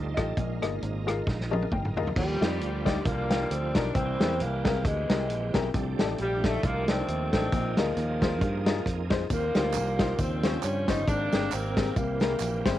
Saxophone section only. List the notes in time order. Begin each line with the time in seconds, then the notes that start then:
2.17 A#2 D3 G3
3.06 D3 G3 A#3
3.50 C4
3.75 D4
3.95 E3 G3 C4
4.41 A#3
4.66 A#3
4.86 E3 G#3
6.22 G3
6.46 A3
6.64 D3 D#3 A#3
6.89 D#3 A3 C4
7.33 D#3 G#3 C4
7.77 D#3 F3 A#3
9.31 F3 G3 A#3
10.20 F3 G3 C4
10.63 C#4
10.88 D#4
11.07 G3 A#3 D4
11.52 D#3 G3 C4
11.97 E3 G3 A#3